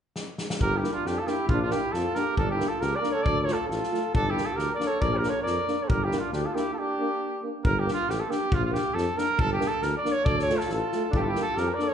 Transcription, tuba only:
0.60 G1
1.05 F2
1.47 A#1
1.94 F2
2.37 G1
2.81 C#2
3.25 D2
3.68 A1
4.13 G1
4.57 D2
5.01 A#1
5.45 F2
5.89 G1
6.32 D2
7.64 G1
8.08 A1
8.51 A#1
8.95 F2
9.38 G1
9.82 D2
10.25 D2
10.69 A1
11.13 G1
11.57 F2

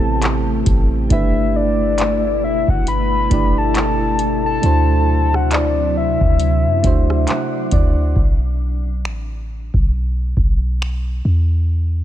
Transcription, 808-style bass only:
Already playing: A1
0.67 A1
1.11 G1
2.68 G1
3.31 G1
4.63 D2
6.21 D2
6.65 F#2
6.84 D2
7.72 D2
8.16 B1
9.04 A1
9.74 B1
10.37 B1
11.25 E2

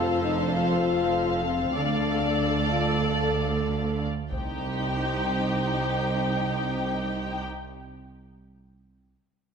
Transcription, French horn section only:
Already playing: F4
0.23 D#4
0.39 D4
0.54 F4
1.44 C4
1.76 D4
2.69 F4
3.00 A4
4.31 C5

